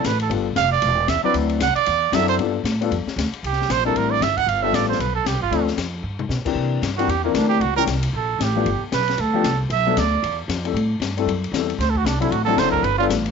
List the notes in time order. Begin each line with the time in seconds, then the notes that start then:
0.04 A1 B4, snare, hi-hat pedal, ride
0.20 A4, ride
0.30 G1 G3 B3 D4 F4 A4, ride
0.56 F1 F5, snare, hi-hat pedal, ride
0.72 D5
0.82 E1, ride
1.08 E2 E5, snare, hi-hat pedal, ride
1.23 F#3 C4 D4 E4 B4 D5, muted upright bass stroke
1.34 D2, ride
1.49 ride
1.60 C2 F#5, snare, hi-hat pedal, ride
1.75 D5, muted upright bass stroke, ride
1.86 E2, ride
2.12 F#2 F#3 C4 D4 E4 A4 E5, snare, hi-hat pedal, ride
2.28 C5, ride
2.38 G2 G3 B3 D4 F4 A4, ride
2.64 A2, snare, hi-hat pedal, ride
2.81 G3 B3 D4 F4 A4, ride
2.91 F2, ride
3.06 muted upright bass stroke, snare
3.16 D2, snare, hi-hat pedal, ride
3.32 muted upright bass stroke, ride
3.43 C2 G4, ride
3.53 snare
3.61 snare
3.69 A#1 C5, snare, hi-hat pedal, ride
3.85 G3 C4 D4 E4 A4 A#4
3.96 A1 A#4, ride
4.11 D5
4.21 G1 E5, snare, hi-hat pedal, ride
4.37 F#5, kick, ride
4.47 G1 F5, ride
4.62 G3 B3 D4 F4 A4 E5
4.73 A1 D5, snare, hi-hat pedal, ride
4.83 snare
4.89 C5, snare
4.99 B1 B4, ride
5.15 A4
5.25 C2 G4, snare, hi-hat pedal, ride
5.33 B1
5.41 G1 F4
5.50 D2 F3 A3 C4 D4 A4, ride
5.67 snare
5.77 F2, snare, hi-hat pedal, ride
6.03 G2
6.19 mid tom
6.29 B2, snare, hi-hat pedal
6.45 E3 A#3 C4 D4 G4, muted upright bass stroke, kick, crash
6.55 C3
6.82 G2, snare, hi-hat pedal, ride
6.97 E3 A#3 C4 D4 F#4 G4, ride
7.08 E2 G4, ride
7.24 E3 A#3 C4 D4 A#4
7.34 D2 D4, snare, hi-hat pedal, ride
7.49 G4
7.60 C#2 F#4, ride
7.76 E3 G3 A#3 C#4 G4 A#4
7.87 C2, snare, hi-hat pedal, ride
8.03 ride
8.13 A#1 A4
8.39 A1 G4, snare, hi-hat pedal, ride
8.55 F3 A3 B3 D4 G4
8.65 G1, ride
8.82 muted upright bass stroke
8.92 B1 B4, snare, hi-hat pedal, ride
9.01 snare
9.08 snare, ride
9.18 D2 A4, ride
9.34 F3 A3 B3 D4 G4
9.44 C2, snare, hi-hat pedal, ride
9.70 B1 E5, ride
9.86 F#3 A3 B3 D4 A4
9.97 D2 D5, snare, hi-hat pedal, ride
10.23 E2, ride
10.48 F2, snare, hi-hat pedal, ride
10.64 G3 A3 C4 E4 A4, ride
10.74 A2, ride
11.00 G2, snare, hi-hat pedal, ride
11.17 G3 A3 C4 E4 A4, ride
11.26 F#2, ride
11.44 ride
11.52 E2 G3 A3 C4 E4 A4, snare, hi-hat pedal, ride
11.70 ride
11.78 D2 C5, snare, ride
11.90 A4
11.95 F#4, kick
12.04 C2 D4, snare, hi-hat pedal, ride
12.20 F#3 C4 D4 E4 A4, ride
12.31 A1 F#4, ride
12.45 F#3 C4 D4 E4 A4
12.49 A4
12.56 F#1 C5, snare, hi-hat pedal, ride
12.71 A#4, kick
12.83 G1 B4, ride
12.98 G3 B3 D4 F4 A4
13.09 A1, snare, hi-hat pedal, ride
13.26 ride